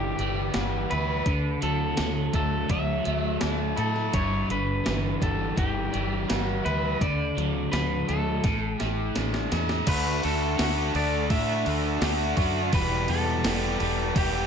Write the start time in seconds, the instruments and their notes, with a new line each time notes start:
Already playing: fingered electric bass G1, overdriven electric guitar G2 D3 E3 G3, clean electric guitar G4
0.19 fingered electric bass G1, overdriven electric guitar G3, closed hi-hat
0.54 fingered electric bass G1, overdriven electric guitar B3, snare, closed hi-hat
0.90 fingered electric bass D2, overdriven electric guitar E4, clean electric guitar B4, closed hi-hat
1.26 fingered electric bass D2, overdriven electric guitar D3, kick, closed hi-hat
1.62 fingered electric bass D2, overdriven electric guitar F#3, clean electric guitar A4, closed hi-hat
1.97 fingered electric bass D2, overdriven electric guitar F#3, snare, closed hi-hat
2.33 fingered electric bass D2, overdriven electric guitar A3, clean electric guitar A4, kick, closed hi-hat
2.69 fingered electric bass D2, overdriven electric guitar F#3, clean electric guitar E5, kick, closed hi-hat
3.05 fingered electric bass D2, overdriven electric guitar A3, closed hi-hat
3.40 fingered electric bass D2, overdriven electric guitar D4, snare, closed hi-hat
3.77 fingered electric bass A2, overdriven electric guitar E4, clean electric guitar A4, closed hi-hat
3.96 snare
4.13 fingered electric bass G1, overdriven electric guitar G2, clean electric guitar C#5, kick, closed hi-hat
4.50 fingered electric bass G1, overdriven electric guitar D3, clean electric guitar B4, closed hi-hat
4.85 fingered electric bass G1, overdriven electric guitar E3, snare, closed hi-hat
5.21 fingered electric bass G1, overdriven electric guitar G3, clean electric guitar A4, kick, closed hi-hat
5.56 fingered electric bass G1, overdriven electric guitar E3, clean electric guitar G4, kick, closed hi-hat
5.93 fingered electric bass G1, overdriven electric guitar G3, closed hi-hat
6.28 fingered electric bass G1, overdriven electric guitar B3, clean electric guitar F#4, snare, closed hi-hat
6.64 fingered electric bass D2, overdriven electric guitar E4, clean electric guitar B4, closed hi-hat
7.01 fingered electric bass D2, overdriven electric guitar D3, clean electric guitar D5, kick, closed hi-hat
7.37 fingered electric bass D2, overdriven electric guitar F#3, closed hi-hat
7.72 fingered electric bass D2, overdriven electric guitar F#3, clean electric guitar B4, snare, closed hi-hat
8.08 fingered electric bass D2, overdriven electric guitar A3, clean electric guitar A4, closed hi-hat
8.44 fingered electric bass A1, overdriven electric guitar A2, kick, snare, closed hi-hat
8.80 fingered electric bass A1, overdriven electric guitar A3, clean electric guitar G4, snare, closed hi-hat
9.15 fingered electric bass A1, overdriven electric guitar D4, snare, closed hi-hat
9.34 snare
9.51 fingered electric bass E2, overdriven electric guitar E4, snare, closed hi-hat
9.69 snare
9.87 fingered electric bass D2, overdriven electric guitar D3 A3 D4 F#4, clean electric guitar B4, kick, crash
10.22 fingered electric bass D2, overdriven electric guitar A3 D4 F#4, clean electric guitar A4, crash
10.58 fingered electric bass D2, overdriven electric guitar D3 A3 D4 F#4, snare, crash
10.94 fingered electric bass D2, overdriven electric guitar A3 D4 F#4, clean electric guitar D5, crash
11.30 fingered electric bass A2, overdriven electric guitar D3 A3 D4 F#4, clean electric guitar E5, kick, crash
11.65 fingered electric bass D2, overdriven electric guitar A3 D4 F#4, crash
12.01 fingered electric bass D2, overdriven electric guitar D3 A3 D4 F#4, snare, crash
12.36 fingered electric bass F#2, overdriven electric guitar A3 D4 F#4, kick, crash
12.72 fingered electric bass E1, overdriven electric guitar E2 B2 E3 G3 B3 G4, clean electric guitar B4, kick, crash
13.08 fingered electric bass E2, overdriven electric guitar E3 G3 B3 G4, clean electric guitar A4, crash
13.43 fingered electric bass E1, overdriven electric guitar E3 G3 B3 G4, snare, crash
13.79 fingered electric bass E1, overdriven electric guitar E3 G3 B3 G4, crash
14.15 fingered electric bass E1, overdriven electric guitar E2 B2 E3 G3 B3 G4, clean electric guitar G4, kick, crash